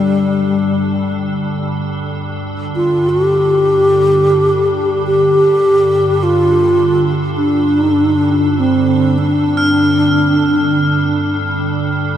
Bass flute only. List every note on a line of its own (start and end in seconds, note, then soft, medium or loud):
0.00 1.11 G3 medium
2.76 3.11 F4 medium
3.09 5.06 G4 medium
5.07 6.25 G4 medium
6.23 7.12 F4 medium
7.37 7.80 D4 medium
7.80 7.92 D#4 medium
7.92 8.61 D4 medium
8.60 9.20 C4 medium
9.18 11.37 D4 medium